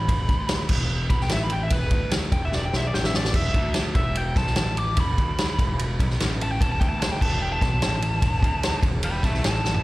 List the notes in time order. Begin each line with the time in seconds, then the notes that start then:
Already playing: B5
0.08 E1, kick, ride
0.29 D2, kick, ride
0.49 snare, ride
0.69 E1, kick, crash
1.10 B1 B5, kick, ride
1.21 G5, snare
1.29 A1 E5, snare, ride
1.43 B5
1.50 G5, ride
1.63 E5
1.70 E1 B4, kick, ride
1.91 D2, kick, ride
2.11 snare, ride
2.32 E1 G5, kick, ride
2.45 E5
2.52 D5, snare
2.65 G5
2.73 B1 E5, snare
2.87 D5
2.94 A1 G5, snare
3.04 E5, snare
3.14 D5, snare
3.25 snare
3.33 E1 E5, kick, crash
3.54 D2, kick, ride
3.74 snare, ride
3.95 E1 E5, kick, ride
4.15 G5, ride
4.36 B1 A5, kick, snare, ride
4.47 snare
4.56 A1, snare, ride
4.77 D6, ride
4.97 E1 B5, kick, ride
5.18 D2, kick, ride
5.38 snare, ride
5.58 E1, kick, ride
5.79 ride
6.00 B1, kick, ride
6.10 snare
6.20 A1, snare, ride
6.41 A5, ride
6.52 G5
6.61 E1 A5, kick, ride
6.72 A5
6.80 D2 G5, kick, ride
6.89 A5
7.00 A5, snare, ride
7.11 G5
7.21 E1 A5, kick, crash
7.32 A5
7.42 G5
7.52 A5
7.61 B1 A5, kick, snare, ride
7.82 A1, snare, ride
8.02 ride
8.22 E1, kick, ride
8.42 D2, kick, ride
8.63 snare, ride
8.83 E1, kick, ride
9.03 G5 B5, ride
9.23 B1 E5 A5, kick, snare, ride
9.34 snare
9.44 A1 A5, snare, ride
9.65 snare
9.74 floor tom